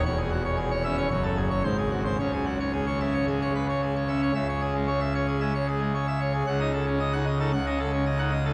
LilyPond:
<<
  \new Staff \with { instrumentName = "Pipe organ" } { \time 4/4 \key cis \minor \tempo 4 = 113 cis''16 gis'16 fis'16 cis''16 gis'16 cis''16 e''16 cis''16 cis''16 a'16 gis'16 cis''16 bis'16 gis'16 fis'16 bis'16 | cis''16 gis'16 fis'16 cis''16 gis'16 cis''16 e''16 cis''16 gis'16 cis''16 b'16 cis''16 gis'16 cis''16 e''16 cis''16 | e''16 cis''16 gis'16 gis16 cis''16 e''16 cis''16 gis'16 e''16 cis''16 gis'16 gis16 cis''16 e''16 cis''16 gis'16 | fis''16 dis''16 a'16 cis'16 dis''16 fis''16 dis''16 a'16 fis''16 dis''16 a'16 cis'16 dis''16 fis''16 dis''16 a'16 | }
  \new Staff \with { instrumentName = "Pipe organ" } { \clef bass \time 4/4 \key cis \minor << { e,4. cis'8 fis,4 gis,4 | cis4. cis'8 gis8 r4 cis'8 | cis2 gis16 r4. r16 | cis16 dis'16 r8. dis'16 r16 dis'16 cis16 cis'16 r8. dis'16 r16 dis'16 | } \\ { e,,2 fis,,4 gis,,4 | cis,1 | cis,1 | cis,2 cis,2 | } >> }
>>